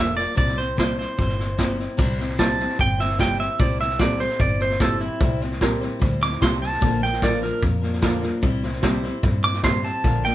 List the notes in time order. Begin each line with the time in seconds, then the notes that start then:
Already playing: F1 A#2 D3 F3 A#3 D4 A#4 E5
0.15 F3 A#3 D4 A#4 D5, snare
0.35 C2 C3 G3 C4 E4 C5 D5, kick, snare
0.48 snare
0.56 C4 E4 C5, snare
0.76 C3 G3 C4 E4 C5, kick, snare, hi-hat pedal
0.96 C4 E4 C5, snare
1.17 G1 G3 C4 E4 C5, kick, snare
1.29 snare
1.37 C4 E4 C5, snare
1.57 C3 G3 C4 E4 C5, kick, snare, hi-hat pedal
1.77 C4 E4 C5, snare
1.97 C2 C3 G3 C4 E4 C5, kick, snare, crash
2.18 C4 E4 C5, snare
2.29 snare
2.38 C3 G3 C4 E4 G4 C5 A5, kick, snare, hi-hat pedal
2.58 C4 E4 C5, snare
2.70 snare
2.79 G1 G3 C4 C5 G5, kick, snare
2.98 C4 E4 C5 E5, snare
3.09 snare
3.18 C3 G3 C4 E4 G4 C5 G5, kick, snare, hi-hat pedal
3.39 C4 E4 C5 E5, snare
3.59 C2 C3 G3 C4 E4 C5 D5, kick, snare
3.79 C4 E4 C5 E5, snare
3.90 snare
3.99 C3 G3 C4 E4 G4 A4 C5 D5, kick, snare, hi-hat pedal
4.19 C4 E4 C5, snare
4.29 snare
4.39 G1 G3 C4 E4 C5 D5, kick, snare
4.59 C4 E4 C5, snare
4.70 snare
4.80 C3 G3 C4 E4 G4 A4 C5, kick, snare, hi-hat pedal
5.00 C4 E4 C5, snare
5.20 C2 C3 G3 C4 E4 C5, kick, snare
5.41 C4 E4 C5, snare
5.51 snare
5.61 C3 G3 C4 E4 G4 A#4 C5, kick, snare, hi-hat pedal
5.81 C4 E4 C5, snare
5.99 D2 G3 C4 E4 C5, kick, snare
6.21 C4 E4 C5 D6, snare
6.32 snare
6.40 C2 C3 G3 C4 E4 G4 C5 C6, kick, snare, hi-hat pedal
6.61 C4 E4 C5 A5, snare
6.73 snare
6.81 A#1 A#2 D3 F3 A#3 D4 A#4, kick, snare
7.01 F3 A#3 D4 A#4 G5, snare
7.13 snare
7.22 A#2 D3 F3 A#3 D4 F4 A#4 D5, kick, snare, hi-hat pedal
7.42 F3 A#3 D4 A#4, snare
7.61 F2 F3 A#3 D4 A#4, kick, snare
7.82 F3 A#3 D4 A#4, snare
7.93 snare
8.02 A#2 D3 F3 A#3 D4 F4 A#4 D5, kick, snare, hi-hat pedal
8.21 F3 A#3 D4 A#4, snare
8.42 C2 C3 G3 C4 E4 C5, kick, snare
8.63 C4 E4 C5, snare
8.73 snare
8.82 C3 G3 C4 E4 G4 C5 E5, kick, snare, hi-hat pedal
9.03 C4 E4 C5, snare
9.23 G2 G3 C4 E4 C5, kick, snare
9.43 C4 E4 C5 D6, snare
9.54 snare
9.63 C3 G3 C4 E4 G4 C5 E5 C6, kick, snare, hi-hat pedal
9.83 C4 E4 C5 A5, snare
10.04 A#1 A#2 D3 F3 A#3 D4 A#4, kick, snare
10.24 F3 A#3 D4 A#4 G5, snare